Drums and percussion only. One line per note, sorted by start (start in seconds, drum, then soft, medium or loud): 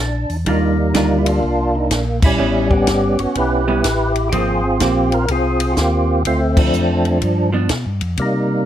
0.30 open hi-hat soft
0.46 kick soft
0.46 ride medium
0.94 kick soft
0.94 snare medium
0.94 hi-hat pedal medium
0.94 ride medium
1.26 ride medium
1.43 kick soft
1.91 kick soft
1.91 snare medium
1.91 hi-hat pedal medium
1.91 ride medium
2.22 kick medium
2.22 crash medium
2.71 kick medium
2.87 kick soft
2.87 snare medium
2.87 hi-hat pedal medium
2.87 ride medium
3.19 ride soft
3.35 kick soft
3.35 ride medium
3.84 kick soft
3.84 snare medium
3.84 hi-hat pedal medium
3.84 ride medium
4.16 ride soft
4.32 kick soft
4.32 ride medium
4.80 kick soft
4.80 snare medium
4.80 hi-hat pedal medium
4.80 ride medium
5.12 ride soft
5.28 kick soft
5.28 ride medium
5.60 ride medium
5.77 kick soft
5.77 snare medium
5.77 hi-hat pedal medium
6.25 kick soft
6.25 ride medium
6.57 kick medium
6.57 crash medium
6.73 hi-hat pedal medium
7.05 ride soft
7.22 kick soft
7.22 ride medium
7.69 kick soft
7.69 snare medium
7.69 hi-hat pedal medium
7.69 ride medium
8.01 ride soft
8.17 kick soft
8.17 ride medium